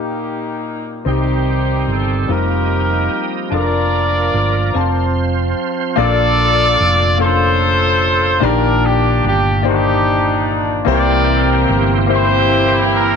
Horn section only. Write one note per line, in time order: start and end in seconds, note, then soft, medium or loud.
0.00 1.03 A#3 soft
0.00 1.03 D#4 soft
0.00 0.73 G4 medium
1.08 2.26 C4 medium
1.08 2.26 D#4 medium
1.08 1.85 G4 medium
1.90 2.30 A4 medium
2.31 3.37 D#4 medium
2.31 3.37 G4 medium
2.31 3.37 A#4 medium
3.54 5.13 F4 medium
3.54 5.12 A#4 medium
3.54 5.17 D5 medium
5.98 7.17 F4 medium
5.98 7.16 A4 medium
5.98 7.16 D5 loud
7.20 8.39 F4 medium
7.20 8.39 A4 medium
7.20 8.42 C5 loud
8.43 9.61 D4 medium
8.43 8.84 G4 medium
8.43 8.84 A#4 loud
8.85 9.25 G4 medium
9.27 9.63 G4 medium
9.68 10.85 D4 medium
9.68 10.85 D#4 medium
9.68 10.55 G4 medium
10.90 12.07 G4 medium
10.90 12.07 A#4 medium
10.90 11.67 D5 loud
12.13 13.16 E4 medium
12.13 13.16 G4 medium
12.13 12.89 C5 loud
12.94 13.16 A#4 medium